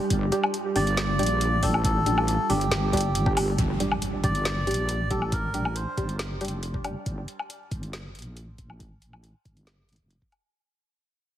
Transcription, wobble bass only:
0.10 G1
0.76 G1
1.19 A#1
1.63 A1
2.50 G1
2.71 G1
3.37 G1
3.58 G1
4.24 G1
4.67 A#1
5.11 A1
5.97 G1
6.41 F1
7.06 G1
7.71 G1
8.15 A#1
8.58 A1
9.45 G1
9.89 A1
10.00 F1

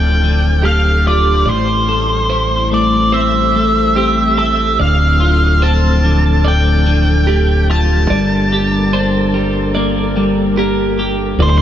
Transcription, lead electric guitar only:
Already playing: G5
0.65 F5
1.07 D5
1.49 C5
2.74 D5
3.14 E5
4.39 E5
4.81 F5
5.63 A5
6.48 G5
7.71 A5
11.42 C5
11.50 C5
11.58 C5

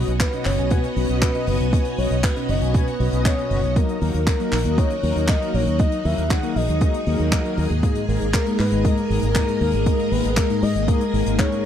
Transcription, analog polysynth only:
Already playing: B2 C#4 F#4 B4 D#5
0.33 B2 C#4 F#4 B4 D#5
0.58 B2 C#4 F#4 B4 G#5
0.97 B2 C#4 F#4 B4 D#5
1.35 B2 C#4 F#4 B4 D#5
1.60 B2 C#4 F#4 B4 G#5
1.98 B2 C#4 F#4 B4 D#5
2.36 B2 C#4 F#4 B4 D#5
2.62 B2 C#4 F#4 B4 G#5
3.00 B2 C#4 F#4 B4 D#5
3.38 B2 C#4 F#4 B4 D#5
3.63 F#3 A#3 D#4 D#5
4.02 F#3 A#3 D#4 A#4
4.40 F#3 A#3 D#4 A#4
4.65 F#3 A#3 D#4 D#5
5.03 F#3 A#3 D#4 A#4
5.41 F#3 A#3 D#4 A#4
5.67 F#3 A#3 D#4 D#5
6.05 F#3 A#3 D#4 A#4
6.43 F#3 A#3 D#4 A#4
6.69 F#3 A#3 D#4 D#5
7.07 F#3 A#3 D#4 A#4
7.45 F#3 A#3 D#4 A#4
7.70 G#2 G#3 A#3 D#4 D#5
8.08 G#2 G#3 A#3 D#4 A#4
8.46 G#2 G#3 A#3 D#4 A#4
8.72 G#2 G#3 A#3 D#4 D#5
9.10 G#2 G#3 A#3 D#4 A#4
9.48 G#2 G#3 A#3 D#4 A#4
9.74 G#2 G#3 A#3 D#4 D#5
10.12 G#2 G#3 A#3 D#4 A#4
10.50 G#2 G#3 A#3 D#4 A#4
10.75 G#2 G#3 A#3 D#4 D#5
11.13 G#2 G#3 A#3 D#4 A#4
11.52 G#2 G#3 A#3 D#4 A#4

